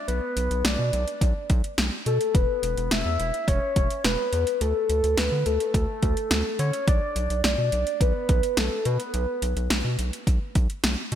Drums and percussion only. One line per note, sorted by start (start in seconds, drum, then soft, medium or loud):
0.08 closed hi-hat medium
0.37 closed hi-hat medium
0.51 closed hi-hat medium
0.65 snare loud
0.65 closed hi-hat medium
0.93 closed hi-hat medium
1.08 closed hi-hat medium
1.21 kick medium
1.21 closed hi-hat medium
1.50 kick medium
1.50 closed hi-hat medium
1.64 closed hi-hat medium
1.78 snare loud
1.78 closed hi-hat medium
2.06 closed hi-hat medium
2.21 closed hi-hat medium
2.35 kick loud
2.35 closed hi-hat medium
2.63 closed hi-hat medium
2.77 closed hi-hat medium
2.91 snare loud
2.91 closed hi-hat medium
3.20 closed hi-hat medium
3.34 closed hi-hat medium
3.48 kick medium
3.48 closed hi-hat medium
3.76 kick medium
3.76 closed hi-hat medium
3.90 closed hi-hat medium
4.04 snare loud
4.04 closed hi-hat medium
4.33 closed hi-hat medium
4.47 closed hi-hat medium
4.61 closed hi-hat medium
4.90 closed hi-hat medium
5.04 closed hi-hat medium
5.17 snare loud
5.17 closed hi-hat medium
5.46 closed hi-hat medium
5.60 closed hi-hat medium
5.74 kick medium
5.74 closed hi-hat medium
6.03 kick medium
6.03 closed hi-hat medium
6.17 closed hi-hat medium
6.31 snare loud
6.31 closed hi-hat medium
6.59 closed hi-hat medium
6.73 closed hi-hat medium
6.88 kick loud
6.88 closed hi-hat medium
7.16 closed hi-hat medium
7.30 closed hi-hat medium
7.44 snare loud
7.44 closed hi-hat medium
7.72 closed hi-hat medium
7.87 closed hi-hat medium
8.01 kick medium
8.01 closed hi-hat medium
8.29 kick medium
8.29 closed hi-hat medium
8.43 closed hi-hat medium
8.57 snare loud
8.57 closed hi-hat medium
8.85 closed hi-hat medium
9.00 closed hi-hat medium
9.14 closed hi-hat medium
9.42 closed hi-hat medium
9.57 closed hi-hat medium
9.70 snare loud
9.70 closed hi-hat medium
9.99 closed hi-hat medium
10.13 closed hi-hat medium
10.27 kick medium
10.27 closed hi-hat medium
10.55 kick medium
10.55 closed hi-hat medium
10.70 closed hi-hat medium
10.84 snare loud
10.84 closed hi-hat medium
11.12 closed hi-hat medium